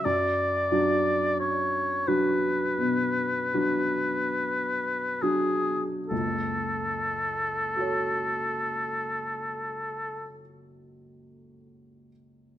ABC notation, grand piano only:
X:1
M:4/4
L:1/8
Q:1/4=37
K:F#m
V:1 name="Grand piano"
z8 | z2 [FAc]6 |]
V:2 name="Grand piano"
F,, [F,DF]2 [F,DF] B,, [F,DF]2 [F,DF] | [F,,,C,,]8 |]